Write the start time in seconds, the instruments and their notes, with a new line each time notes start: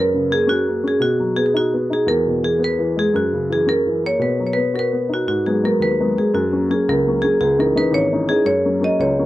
Already playing: upright piano F#2
0.00 marimba A#4
0.14 upright piano C#3
0.30 upright piano A#3, marimba G#4
0.47 upright piano C#4, marimba F#4
0.67 upright piano A#3
0.84 upright piano C#4, marimba G#4
1.00 upright piano B2, marimba F#4
1.20 upright piano F#3
1.36 upright piano B3, marimba G#4
1.46 marimba G#4
1.54 upright piano D#4, marimba F#4
1.74 upright piano B3
1.90 upright piano D#4, marimba G#4
2.06 upright piano E2, marimba A#4
2.27 upright piano B2
2.43 upright piano E3, marimba G#4
2.59 upright piano B3
2.64 marimba B4
2.79 upright piano E3
2.97 upright piano G#3, marimba G#4
3.14 upright piano F#2, marimba F#4
3.33 upright piano C#3
3.50 upright piano E3, marimba G#4
3.67 upright piano C#4, marimba A#4
3.86 upright piano E3
4.04 upright piano A#3, marimba C#5
4.19 upright piano B2, marimba B4
4.40 upright piano F#3
4.47 marimba C#5
4.53 upright piano B3, marimba B4
4.74 upright piano F#4, marimba A#4
4.79 marimba B4
4.93 upright piano B3
5.09 upright piano D#4
5.14 marimba F#4
5.27 upright piano G#2, marimba F#4
5.46 upright piano F#3 G#3 B3, marimba G#4
5.64 upright piano F#3 G#3 B3, marimba A#4
5.79 upright piano D#2, marimba B4
6.00 upright piano F#3 G#3 B3
6.17 upright piano F#3 G#3 B3, marimba G#4
6.34 upright piano F#2, marimba F#4
6.52 upright piano F#3 A#3 C#4
6.70 upright piano F#3 A#3 C#4, marimba G#4
6.88 upright piano C#2, marimba A#4
7.07 upright piano F#3 A#3 C#4
7.22 upright piano F#3 A#3 C#4, marimba G#4
7.40 upright piano C#2, marimba G#4
7.59 upright piano E3 C#4 D#4, marimba A#4
7.75 upright piano E3 C#4 D#4, marimba B4
7.92 upright piano G#1, marimba C#5
8.12 upright piano E3 C#4 D#4
8.29 upright piano E3 C#4 D#4, marimba G#4
8.45 upright piano F#2, marimba C#5
8.65 upright piano F#3 A#3 C#4
8.80 upright piano F#3 A#3 C#4
8.84 marimba D#5
8.99 upright piano C#2, marimba C#5
9.19 upright piano F#3 A#3 C#4